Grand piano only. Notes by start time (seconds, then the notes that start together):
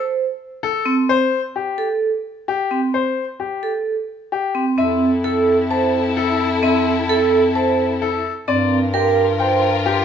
0.63 A4
1.09 C5
1.56 G4
2.48 G4
2.94 C5
3.40 G4
4.32 G4
4.78 E5
5.24 A4
5.71 A5
6.17 A4
6.63 E5
7.09 A4
7.55 A5
8.02 A4
8.48 D5
8.94 G4
9.40 G5
9.86 G4